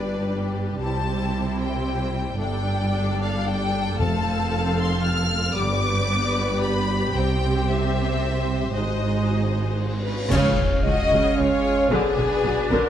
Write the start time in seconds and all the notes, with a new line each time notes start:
Already playing: G1 G2 G3 D4 G4 B4 D5
0.81 C2 C3 E3 G3 C4 E4 G4 C5 A5
1.61 G5
2.37 G1 G2 G3 A3 D4 A4 G5
2.41 D3 G3 A4 D5
3.22 F5
3.49 G5
3.97 F1 F2 F3 A3 C4 A4 F5 A5
4.01 C3
4.80 C6
5.04 F6
5.56 G1 G2 D3 G3 B3 G4 B4 D5 D6
6.62 B5
7.15 C2 C3 G3 C4 G4 C5 G5
7.69 E5
8.72 G#1 G#2 D#3 C4 D#4 F#4 D#5, cymbal swell
8.76 G#3 G#4
10.05 C#4 B4
10.31 C#2 C#3 G#3 C#4 F4 G#4 C#5 F5, concert bass drum, crash, impact
10.58 C#2 C#3
10.84 C#2 C#3 F3 F#4 D#5
11.11 C#2 C#3
11.36 C#2 C#3 F4 C#5
11.89 B1 B2 D3 F#3 B3 D4 F#4 G#4 B4 D5
12.16 B1 B2 D3
12.44 B1 B2 F#3
12.70 B1 B2 D3 C#4 A#4